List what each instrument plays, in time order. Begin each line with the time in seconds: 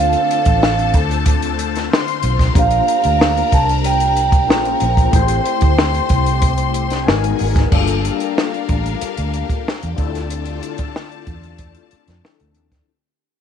Already playing: fingered electric bass D2, string machine D3 A3 C4 F4, tine electric piano A3 C4 D4 F4 C5, string section A4 A5, vibraphone F5
0.13 closed hi-hat
0.31 closed hi-hat
0.45 fingered electric bass A1, kick, closed hi-hat
0.63 snare
0.79 closed hi-hat
0.94 fingered electric bass D2, kick, closed hi-hat
1.11 closed hi-hat
1.26 kick, closed hi-hat
1.42 closed hi-hat
1.59 closed hi-hat
1.76 snare, closed hi-hat
1.91 string section C5 C6, snare
2.08 closed hi-hat
2.23 fingered electric bass B1, closed hi-hat
2.39 kick, snare, closed hi-hat
2.54 fingered electric bass A#1, string machine G3 A#3 D4, tine electric piano A#3 D4 F4 G4, string section A#4 A#5, kick, closed hi-hat
2.58 tine electric piano C5, vibraphone F5
2.71 closed hi-hat
2.88 closed hi-hat
3.04 fingered electric bass D2, closed hi-hat
3.21 snare
3.37 closed hi-hat
3.52 fingered electric bass C2, vibraphone A5, kick, closed hi-hat
3.69 closed hi-hat
3.84 vibraphone G5, closed hi-hat
4.00 closed hi-hat
4.17 closed hi-hat
4.32 kick, closed hi-hat
4.48 fingered electric bass A#1, string machine G#3 C#4, tine electric piano A#3 C#4 F4 G#4 C5, string section A#4 A#5, snare
4.65 closed hi-hat
4.80 fingered electric bass A#1, closed hi-hat
4.97 kick, closed hi-hat
5.11 fingered electric bass A1, tine electric piano A3 C4 E4 G4 C5, string machine A3 C4 G4, string section C5 C6, kick, closed hi-hat
5.28 closed hi-hat
5.45 closed hi-hat
5.61 fingered electric bass D2, kick, closed hi-hat
5.79 snare
5.94 closed hi-hat
6.09 fingered electric bass C2, kick, closed hi-hat
6.26 closed hi-hat
6.42 kick, closed hi-hat
6.58 closed hi-hat
6.74 closed hi-hat
6.90 snare, closed hi-hat
7.06 fingered electric bass G#1, tine electric piano G#3 B3 D#4 F#4 A#4, string machine G#3 B3 F#4 A#4, string section G#4 G#5, snare
7.24 closed hi-hat
7.39 fingered electric bass G#1, open hi-hat
7.56 kick, snare, closed hi-hat
7.71 fingered electric bass G1, tine electric piano G3 A#3 D4 F4 A4, string machine G3 A#3 G4 A5, string section D4 A#4 F5, kick, crash
7.87 closed hi-hat
8.05 closed hi-hat
8.20 closed hi-hat
8.38 snare
8.54 closed hi-hat
8.69 fingered electric bass A1, kick, closed hi-hat
8.86 closed hi-hat
9.01 muted fingered electric bass stroke, closed hi-hat
9.17 fingered electric bass D2, closed hi-hat
9.34 closed hi-hat
9.50 kick, closed hi-hat
9.68 snare
9.83 fingered electric bass E2, closed hi-hat
9.96 fingered electric bass D2, string machine D3 A3 C4, tine electric piano C4 D4 E4 F4 A4, string section F4 D5 A5, kick, closed hi-hat
10.15 snare, closed hi-hat
10.30 closed hi-hat
10.45 closed hi-hat
10.63 closed hi-hat
10.78 kick, closed hi-hat
10.96 snare
11.12 closed hi-hat
11.27 fingered electric bass E2, kick, closed hi-hat
11.43 closed hi-hat
11.58 kick, closed hi-hat
11.75 closed hi-hat
11.91 muted fingered electric bass stroke, closed hi-hat
12.08 fingered electric bass F2, snare, closed hi-hat
12.23 tine electric piano F3 C4 D4 E4 A4, snare
12.40 fingered electric bass D2, closed hi-hat
12.55 fingered electric bass D#2, closed hi-hat
12.72 kick, snare, closed hi-hat